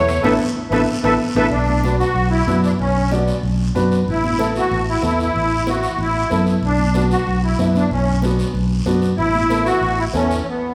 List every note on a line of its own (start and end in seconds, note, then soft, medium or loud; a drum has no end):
0.00 0.18 E2 loud
0.00 0.22 C#5 medium
0.08 high timbale medium
0.08 short guiro medium
0.22 0.36 A1 medium
0.22 0.34 E4 loud
0.22 0.33 A4 medium
0.22 0.34 A4 medium
0.22 0.33 B4 medium
0.22 0.34 B4 medium
0.22 0.34 E5 medium
0.22 high conga loud
0.22 high timbale loud
0.22 long guiro loud
0.71 0.83 A1 medium
0.71 0.83 E4 medium
0.71 0.82 A4 medium
0.71 0.83 A4 medium
0.71 0.82 B4 medium
0.71 0.82 E5 medium
0.71 high conga loud
0.71 high timbale loud
0.71 long guiro medium
1.04 1.16 A1 loud
1.04 1.15 E4 medium
1.04 1.14 A4 medium
1.04 1.15 A4 medium
1.04 1.14 B4 medium
1.04 1.15 B4 medium
1.04 1.14 E5 medium
1.04 high conga loud
1.04 high timbale medium
1.04 long guiro medium
1.35 1.47 A1 loud
1.35 1.47 E4 medium
1.35 1.47 A4 medium
1.35 1.47 A4 loud
1.35 1.47 B4 medium
1.35 1.47 E5 medium
1.35 high conga medium
1.35 high timbale medium
1.51 2.02 B1 medium
1.51 1.96 D4 medium
1.51 high conga soft
1.51 long guiro medium
1.69 high conga medium
1.84 2.06 D4 medium
1.84 2.06 F#4 medium
1.84 2.07 B4 medium
1.84 high conga medium
1.84 short guiro medium
1.99 2.29 F#4 loud
1.99 short guiro medium
2.15 2.41 B1 medium
2.15 high conga soft
2.15 long guiro medium
2.30 2.61 E4 medium
2.47 2.73 F#2 medium
2.47 2.70 D4 medium
2.47 2.70 F#4 medium
2.47 2.70 B4 medium
2.47 high conga medium
2.47 short guiro medium
2.64 2.71 D4 medium
2.64 short guiro medium
2.79 3.30 B1 medium
2.79 3.13 C#4 medium
2.79 high conga soft
2.79 long guiro medium
3.11 3.42 B3 medium
3.11 3.34 D4 medium
3.11 3.34 F#4 medium
3.11 3.34 D5 medium
3.11 high conga medium
3.11 short guiro medium
3.27 short guiro medium
3.43 3.69 B1 medium
3.43 high conga soft
3.43 long guiro medium
3.75 4.01 F#2 medium
3.75 3.97 D4 medium
3.75 3.98 F#4 medium
3.75 3.98 B4 medium
3.75 high conga medium
3.75 short guiro medium
3.91 short guiro medium
4.07 4.58 A1 medium
4.07 4.53 E4 loud
4.07 high conga soft
4.07 long guiro medium
4.24 high conga medium
4.39 4.61 B3 medium
4.39 4.62 E4 medium
4.39 4.62 A4 medium
4.39 high conga medium
4.39 short guiro medium
4.56 4.86 F#4 medium
4.56 short guiro medium
4.71 4.97 A1 medium
4.71 high conga soft
4.71 long guiro medium
4.88 5.03 E4 medium
5.02 5.29 E2 loud
5.02 5.25 B3 medium
5.02 5.25 E4 medium
5.02 5.19 E4 medium
5.02 5.26 A4 medium
5.02 high conga medium
5.02 short guiro medium
5.20 5.70 E4 loud
5.20 short guiro medium
5.35 5.86 A1 medium
5.35 high conga soft
5.35 long guiro medium
5.67 5.89 B3 medium
5.67 5.90 E4 medium
5.67 6.01 F#4 medium
5.67 5.90 B4 medium
5.67 high conga medium
5.67 short guiro medium
5.83 short guiro medium
5.98 6.24 A1 medium
5.98 6.45 E4 loud
5.98 high conga soft
5.98 long guiro medium
6.30 6.57 F#2 medium
6.30 6.53 B3 medium
6.30 6.53 E4 medium
6.30 6.53 A4 medium
6.30 high conga medium
6.30 short guiro medium
6.46 short guiro medium
6.62 7.14 B1 medium
6.62 7.09 D4 medium
6.62 high conga soft
6.62 long guiro medium
6.79 high conga medium
6.94 7.17 B3 medium
6.94 7.17 D4 medium
6.94 7.17 F#4 medium
6.94 high conga medium
6.94 short guiro medium
7.11 7.41 F#4 medium
7.11 short guiro medium
7.27 7.53 B1 medium
7.27 high conga soft
7.27 long guiro medium
7.44 7.59 E4 medium
7.59 7.85 F#2 medium
7.59 7.81 B3 medium
7.59 7.81 D4 medium
7.59 7.82 E4 medium
7.59 7.67 E4 medium
7.59 high conga medium
7.59 short guiro medium
7.75 7.90 D4 medium
7.75 high conga medium
7.75 short guiro medium
7.91 8.42 B1 medium
7.91 8.21 C#4 medium
7.91 high conga soft
7.91 long guiro medium
8.22 8.52 B3 medium
8.22 8.45 B3 medium
8.22 8.46 D4 medium
8.22 8.46 F#4 medium
8.22 high conga medium
8.22 short guiro medium
8.39 short guiro medium
8.54 8.80 B1 medium
8.54 high conga soft
8.54 long guiro medium
8.86 9.12 F#2 medium
8.86 9.09 B3 medium
8.86 9.09 D4 medium
8.86 9.09 F#4 medium
8.86 high conga medium
8.86 short guiro medium
9.02 short guiro medium
9.17 9.70 A1 medium
9.17 9.67 E4 loud
9.17 high conga soft
9.17 long guiro medium
9.35 high conga medium
9.50 9.73 B3 medium
9.50 9.73 E4 medium
9.50 9.73 A4 medium
9.50 high conga medium
9.50 short guiro medium
9.66 9.99 F#4 loud
9.66 short guiro medium
9.81 10.07 A1 medium
9.81 high conga soft
9.81 long guiro medium
9.98 10.05 E4 medium
10.14 10.40 E2 loud
10.14 10.36 B3 medium
10.14 10.38 C#4 medium
10.14 10.37 E4 medium
10.14 10.37 A4 medium
10.14 high conga medium
10.14 short guiro medium
10.31 short guiro medium
10.40 10.47 C#4 medium
10.48 10.74 B3 medium